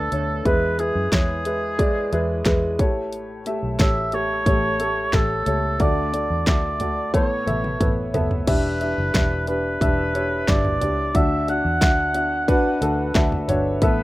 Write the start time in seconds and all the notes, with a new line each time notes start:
Already playing: A3 D4 A4 B4 D5
0.12 D2 A3 D4 C#5, closed hi-hat
0.45 E2 E3 G#3 E4 B4, kick, closed hi-hat
0.79 G#3 E4 G#4 B4, closed hi-hat
0.95 F#2
1.12 E2 G#3 E4 G#4 C#5, kick, snare, clap, closed hi-hat
1.45 G#3 E4 B4, closed hi-hat
1.79 G#3 E4 D5, kick, closed hi-hat
2.12 E2 G#3 E4 B4, closed hi-hat
2.45 E2 G#3 E4 B4, kick, snare, clap, closed hi-hat
2.79 A1 A2 A3 G4 C#5, kick, closed hi-hat
3.13 closed hi-hat
3.46 A3 G4 E5, closed hi-hat
3.63 B1
3.79 A1 A3 G4 C#5 E5, kick, snare, clap, closed hi-hat
4.12 A3 G4 A4 C#5, closed hi-hat
4.46 A1 A3 G4 C#5, kick, closed hi-hat
4.80 A3 G4 A4, closed hi-hat
5.13 A1 A3 G4 A4, kick, snare, clap, closed hi-hat
5.46 C#2 A3 G4 C#5, closed hi-hat
5.80 D2 D3 A3 F#4 D5, kick, closed hi-hat
6.13 A3 F#4 D5, closed hi-hat
6.30 E2
6.47 D2 A3 F#4 D5 E5, kick, snare, clap, closed hi-hat
6.80 A3 F#4 D5, closed hi-hat, floor tom
7.14 A1 A2 B3 A4 C#5, kick, closed hi-hat, high tom
7.47 A1 B3 A4 E5, closed hi-hat, mid tom
7.64 mid tom
7.81 A1 B3 A4 B4, kick, closed hi-hat, mid tom
8.14 F#1 B3 A4 E5, closed hi-hat, floor tom
8.31 floor tom
8.47 E1 E3 D4 G4 B4 E5, kick, closed hi-hat, crash
8.81 D4 G4 E5, closed hi-hat
8.98 F#1
9.14 E1 D4 G4 E5, kick, snare, clap, closed hi-hat
9.47 D4 G4 B4, closed hi-hat
9.81 E1 D4 G4 E5, kick, closed hi-hat
10.14 D4 G4 C#5, closed hi-hat
10.48 G1 D4 G4 D5, kick, snare, clap, closed hi-hat
10.65 floor tom
10.81 C#2 D4 G4 D5, closed hi-hat, floor tom
11.15 D2 D3 D4 F#4 E5, kick, closed hi-hat
11.48 D4 F#4 E5 F#5, closed hi-hat
11.65 E2
11.81 D2 D4 F#4 E5, kick, snare, clap, closed hi-hat
12.14 D4 F#4 E5, closed hi-hat
12.48 D4 F#4 B4, kick, closed hi-hat
12.81 D2 D4 F#4 A4, closed hi-hat
13.15 D2 D4 F#4 E5, kick, snare, clap, closed hi-hat
13.32 floor tom
13.48 G1 D4 F#4 C#5, closed hi-hat, floor tom
13.82 A1 A2 B3 A4 B4 E5, kick, closed hi-hat